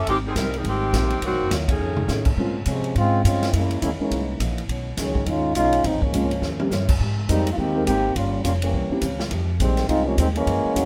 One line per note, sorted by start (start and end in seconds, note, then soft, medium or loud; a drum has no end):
0.06 0.35 G#1 medium
0.06 0.26 G#2 soft
0.06 0.16 D#3 medium
0.06 0.26 G3 soft
0.06 0.16 G#3 medium
0.06 0.16 C4 medium
0.06 0.27 C4 soft
0.06 0.27 D#4 soft
0.06 0.16 G4 loud
0.06 kick soft
0.06 ride medium
0.27 0.32 D#3 medium
0.27 0.31 G3 medium
0.27 0.32 C4 medium
0.27 0.32 G#4 medium
0.35 0.63 C2 medium
0.35 0.55 G#2 medium
0.35 0.54 G3 medium
0.35 0.55 G3 medium
0.35 0.54 C4 medium
0.35 0.56 C4 medium
0.35 0.54 D#4 medium
0.35 0.56 D#4 medium
0.35 0.55 A#4 medium
0.35 kick soft
0.35 snare medium
0.35 hi-hat pedal medium
0.35 ride medium
0.54 0.58 G4 medium
0.54 ride soft
0.58 0.66 D#3 medium
0.58 0.66 G3 medium
0.58 0.66 C4 medium
0.58 0.66 G#4 medium
0.64 0.92 G#1 medium
0.64 0.84 G#2 soft
0.64 0.84 G3 soft
0.64 1.20 G#3 medium
0.64 0.84 C4 soft
0.64 1.20 C4 medium
0.64 0.85 D#4 soft
0.64 kick soft
0.64 ride medium
0.68 1.20 D#3 medium
0.68 1.20 G4 medium
0.93 1.21 A#1 medium
0.93 1.12 G#2 medium
0.93 1.12 G3 medium
0.93 1.13 C4 medium
0.93 1.13 D#4 medium
0.93 kick soft
0.93 snare medium
0.93 hi-hat pedal medium
0.93 ride medium
1.10 ride soft
1.22 1.31 C2 medium
1.22 1.41 C3 soft
1.22 1.53 D#3 medium
1.22 1.42 F#3 soft
1.22 1.42 A#3 soft
1.22 1.52 A#3 medium
1.22 1.53 C4 medium
1.22 1.42 D#4 soft
1.22 1.53 F#4 loud
1.22 kick soft
1.22 ride medium
1.31 1.40 A#1 medium
1.41 1.50 F#1 medium
1.50 1.78 D#2 medium
1.50 1.70 C3 medium
1.50 1.70 F#3 medium
1.50 1.70 A#3 medium
1.50 1.71 D#4 medium
1.50 kick soft
1.50 snare medium
1.50 hi-hat pedal medium
1.50 ride medium
1.68 2.23 D#3 medium
1.68 2.23 A3 medium
1.68 2.23 C#4 medium
1.68 2.23 G#4 medium
1.68 kick medium
1.68 ride medium
1.79 2.08 F2 medium
1.79 1.99 F2 soft
1.79 1.99 D#3 soft
1.79 2.00 A3 soft
1.79 2.00 C#4 soft
1.97 mid tom medium
2.08 2.28 F2 medium
2.08 2.36 A2 medium
2.08 2.28 D#3 medium
2.08 2.24 A3 soft
2.08 2.28 A3 medium
2.08 2.25 C#4 soft
2.08 2.29 C#4 medium
2.08 2.25 D#4 soft
2.08 2.25 G#4 medium
2.08 snare medium
2.08 hi-hat pedal medium
2.25 kick medium
2.25 crash medium
2.37 2.66 A#2 medium
2.37 2.54 G#3 medium
2.37 2.56 A#3 soft
2.37 2.54 A#3 medium
2.37 2.54 C4 medium
2.37 2.57 C#4 soft
2.37 2.54 C#4 medium
2.37 2.55 F4 medium
2.37 2.57 G#4 medium
2.37 2.58 C5 medium
2.37 kick soft
2.66 2.95 C3 medium
2.66 2.85 A#3 medium
2.66 2.86 C#4 medium
2.66 2.95 C#4 medium
2.66 2.86 G#4 medium
2.66 2.86 C5 medium
2.66 kick soft
2.66 hi-hat pedal medium
2.66 ride medium
2.70 2.95 C3 medium
2.70 2.95 F3 medium
2.70 2.95 G#3 medium
2.84 ride soft
2.95 3.24 G#2 medium
2.95 3.24 G#3 medium
2.95 3.15 A#3 soft
2.95 3.24 C4 loud
2.95 3.15 C#4 soft
2.95 3.24 C#4 medium
2.95 3.24 F4 loud
2.95 3.16 G#4 soft
2.95 3.16 C5 soft
2.95 kick soft
2.95 ride medium
3.24 3.53 G2 medium
3.24 3.52 G#3 medium
3.24 3.44 A#3 medium
3.24 3.52 C4 medium
3.24 3.52 C#4 medium
3.24 3.44 C#4 medium
3.24 3.52 F4 loud
3.24 3.44 G#4 medium
3.24 3.45 C5 medium
3.24 kick soft
3.24 hi-hat pedal medium
3.24 ride medium
3.43 snare medium
3.43 ride soft
3.53 3.81 F#2 medium
3.53 3.72 F#2 soft
3.53 3.73 E3 soft
3.53 3.81 G#3 medium
3.53 3.81 A#3 medium
3.53 3.73 A#3 soft
3.53 3.81 C#4 medium
3.53 3.74 D#4 medium
3.53 3.81 E4 medium
3.53 kick soft
3.53 ride medium
3.71 ride medium
3.82 3.99 D#2 medium
3.82 4.02 F#2 medium
3.82 4.02 E3 medium
3.82 3.90 G#3 medium
3.82 3.90 A#3 medium
3.82 4.02 A#3 medium
3.82 3.90 C#4 medium
3.82 4.03 D#4 medium
3.82 3.90 E4 loud
3.82 kick soft
3.82 hi-hat pedal medium
3.82 ride medium
3.99 4.37 E3 medium
3.99 4.37 G#3 medium
3.99 4.38 G#3 medium
3.99 4.37 A#3 medium
3.99 4.38 A#3 medium
3.99 4.37 C#4 medium
3.99 4.38 C#4 medium
3.99 4.39 D#4 medium
3.99 4.39 E4 medium
3.99 muted upright bass stroke soft
4.11 4.39 C2 medium
4.11 4.30 F#2 soft
4.11 4.31 E3 soft
4.11 4.31 A#3 soft
4.11 4.31 D#4 soft
4.11 kick soft
4.11 ride medium
4.40 4.68 A#1 medium
4.40 4.59 F#2 medium
4.40 4.60 E3 medium
4.40 4.60 A#3 medium
4.40 4.60 D#4 medium
4.40 kick soft
4.40 hi-hat pedal medium
4.40 ride medium
4.58 ride soft
4.68 4.97 B1 medium
4.68 4.87 B2 soft
4.68 4.88 D#3 soft
4.68 4.88 G#3 medium
4.68 4.89 C#4 medium
4.68 kick soft
4.68 ride medium
4.97 5.26 C#2 medium
4.97 5.16 B2 medium
4.97 5.17 D#3 medium
4.97 5.25 D#3 medium
4.97 5.26 F#3 medium
4.97 5.17 G#3 medium
4.97 5.26 G#3 medium
4.97 5.25 C#4 medium
4.97 5.17 C#4 medium
4.97 kick soft
4.97 snare soft
4.97 hi-hat pedal medium
4.97 ride medium
5.15 kick medium
5.26 5.54 D#2 medium
5.26 5.46 B2 soft
5.26 5.46 D#3 medium
5.26 5.55 G#3 medium
5.26 5.46 G#3 medium
5.26 5.54 C#4 medium
5.26 5.47 C#4 medium
5.26 5.54 D#4 medium
5.26 5.55 F4 loud
5.26 kick soft
5.26 ride medium
5.55 5.83 B1 medium
5.55 5.75 B2 medium
5.55 5.75 D#3 medium
5.55 5.83 G#3 medium
5.55 5.75 G#3 medium
5.55 5.82 C#4 medium
5.55 5.76 C#4 medium
5.55 5.83 D#4 loud
5.55 5.83 F4 loud
5.55 kick soft
5.55 hi-hat pedal medium
5.55 ride medium
5.73 ride medium
5.84 5.94 A#1 medium
5.84 6.03 A#2 soft
5.84 6.04 F3 soft
5.84 6.02 F3 medium
5.84 6.01 G#3 medium
5.84 6.04 G#3 soft
5.84 6.03 C4 medium
5.84 6.04 C#4 soft
5.84 6.03 D#4 medium
5.84 kick soft
5.84 ride medium
5.94 6.02 G#1 medium
6.02 6.12 F1 medium
6.02 6.60 F3 medium
6.02 6.43 G#3 medium
6.02 6.60 A#3 medium
6.02 6.60 C#4 medium
6.02 kick medium
6.13 6.41 C#2 medium
6.13 6.32 A#2 medium
6.13 6.33 F3 medium
6.13 6.30 G#3 medium
6.13 6.33 G#3 medium
6.13 6.30 A#3 medium
6.13 6.30 C4 medium
6.13 6.30 C#4 medium
6.13 6.33 C#4 medium
6.13 6.30 F4 medium
6.13 kick soft
6.13 hi-hat pedal medium
6.13 ride medium
6.31 ride soft
6.41 6.70 D#2 medium
6.41 6.61 D#3 medium
6.41 6.62 C#4 soft
6.41 6.62 G4 medium
6.41 6.62 C5 medium
6.41 snare soft
6.60 6.70 G3 medium
6.60 6.71 A#3 medium
6.60 6.71 C4 medium
6.60 6.71 C#4 medium
6.60 6.71 G4 medium
6.60 high tom medium
6.70 6.99 G2 medium
6.70 6.90 D#3 medium
6.70 6.90 C#4 medium
6.70 6.91 G4 medium
6.70 6.91 C5 medium
6.70 snare medium
6.70 hi-hat pedal medium
6.89 kick medium
6.89 crash medium
7.00 7.28 G#2 medium
7.00 7.19 G#3 soft
7.00 7.19 C4 soft
7.00 7.20 G4 medium
7.00 7.20 A#4 medium
7.00 kick soft
7.28 7.57 F2 medium
7.28 7.50 G3 medium
7.28 7.45 G#3 medium
7.28 7.48 G#3 medium
7.28 7.50 A#3 medium
7.28 7.45 A#3 medium
7.28 7.51 C4 medium
7.28 7.45 C4 medium
7.28 7.49 C4 medium
7.28 7.51 D#4 loud
7.28 7.46 D#4 medium
7.28 7.49 G4 medium
7.28 7.46 G4 medium
7.28 7.49 A#4 medium
7.28 kick soft
7.28 hi-hat pedal medium
7.28 ride medium
7.47 ride medium
7.52 7.58 F4 medium
7.57 7.86 D#2 medium
7.57 7.85 D#3 medium
7.57 7.77 G#3 soft
7.57 7.84 A#3 medium
7.57 7.85 C4 medium
7.57 7.78 C4 soft
7.57 7.85 G4 loud
7.57 7.78 G4 soft
7.57 kick soft
7.61 7.78 A#4 medium
7.75 7.86 G#3 medium
7.75 7.86 A#3 medium
7.75 7.86 C4 medium
7.75 7.86 D#4 medium
7.75 7.86 A#4 medium
7.85 8.15 G#1 medium
7.85 8.13 D#3 medium
7.85 8.06 G#3 medium
7.85 8.13 A#3 medium
7.85 8.13 C4 medium
7.85 8.06 C4 medium
7.85 8.13 G4 loud
7.85 8.06 G4 medium
7.85 8.06 A#4 medium
7.85 kick soft
7.85 hi-hat pedal medium
7.85 ride medium
8.15 8.44 G1 medium
8.15 8.34 G2 soft
8.15 8.35 F3 soft
8.15 8.43 G3 medium
8.15 8.43 A#3 medium
8.15 8.35 A#3 soft
8.15 8.43 C#4 medium
8.15 8.35 C#4 soft
8.15 8.43 F4 medium
8.15 kick soft
8.15 ride medium
8.44 8.72 F1 medium
8.44 8.63 G2 medium
8.44 8.63 F3 medium
8.44 8.53 G3 medium
8.44 8.53 A#3 medium
8.44 8.64 A#3 medium
8.44 8.52 C#4 medium
8.44 8.64 C#4 medium
8.44 8.52 F4 medium
8.44 kick soft
8.44 hi-hat pedal medium
8.44 ride medium
8.62 9.00 E3 medium
8.62 9.00 G3 medium
8.62 9.00 A#3 medium
8.62 9.00 C#4 medium
8.62 ride medium
8.73 8.89 C2 loud
8.73 8.92 C3 soft
8.73 8.92 E3 soft
8.73 8.93 A#3 soft
8.73 8.93 C#4 soft
8.73 kick soft
8.90 9.01 A#3 medium
8.90 9.01 C4 medium
8.90 9.02 C#4 medium
8.90 9.02 E4 medium
8.90 9.02 G4 medium
8.90 muted upright bass stroke soft
9.02 9.30 C#2 medium
9.02 9.21 C3 medium
9.02 9.21 E3 medium
9.02 9.21 A#3 medium
9.02 9.22 C#4 medium
9.02 kick soft
9.02 hi-hat pedal medium
9.02 ride medium
9.20 snare medium
9.30 9.59 F2 medium
9.30 9.50 F3 soft
9.30 9.50 G#3 soft
9.30 9.51 D#4 medium
9.30 9.51 G4 medium
9.30 kick soft
9.30 ride medium
9.60 9.88 A#1 medium
9.60 9.87 D#3 medium
9.60 9.79 F3 medium
9.60 9.87 G3 medium
9.60 9.79 G#3 medium
9.60 9.87 G#3 medium
9.60 9.88 C4 loud
9.60 9.79 D#4 medium
9.60 9.80 G4 medium
9.60 kick soft
9.60 hi-hat pedal medium
9.60 ride medium
9.77 snare soft
9.77 ride soft
9.88 10.17 C2 medium
9.88 10.08 F3 soft
9.88 10.05 G#3 medium
9.88 10.08 G#3 soft
9.88 10.05 C4 loud
9.88 10.05 D#4 medium
9.88 10.09 D#4 soft
9.88 10.05 F4 loud
9.88 10.09 G4 medium
9.88 kick soft
9.88 ride medium
10.06 10.18 D#3 medium
10.06 10.18 G3 medium
10.06 10.17 G#3 medium
10.06 10.18 A#3 medium
10.06 10.17 C4 medium
10.06 10.18 C#4 medium
10.06 10.17 D#4 medium
10.06 10.17 F4 soft
10.06 10.17 G4 medium
10.18 10.46 D#2 medium
10.18 10.27 D#3 medium
10.18 10.37 F3 medium
10.18 10.27 G3 medium
10.18 10.37 G#3 medium
10.18 10.27 G#3 medium
10.18 10.27 C4 medium
10.18 10.37 D#4 medium
10.18 10.38 G4 medium
10.18 kick soft
10.18 hi-hat pedal medium
10.18 ride medium
10.35 10.85 E3 medium
10.35 10.85 G#3 medium
10.35 10.85 A#3 medium
10.35 10.85 C#4 medium
10.35 ride soft
10.47 10.63 F#2 medium
10.47 10.66 F#3 soft
10.47 10.66 A#3 soft
10.47 10.66 E4 medium
10.47 10.67 G#4 soft
10.47 kick soft
10.47 ride medium
10.65 muted upright bass stroke soft
10.74 10.85 E2 medium
10.74 10.85 F#3 medium
10.74 10.85 G#3 medium
10.74 10.85 A#3 medium
10.74 10.85 C#4 medium
10.74 10.85 E4 medium
10.74 10.85 F#4 medium
10.74 10.85 G#4 medium
10.74 kick soft
10.74 hi-hat pedal medium
10.74 ride medium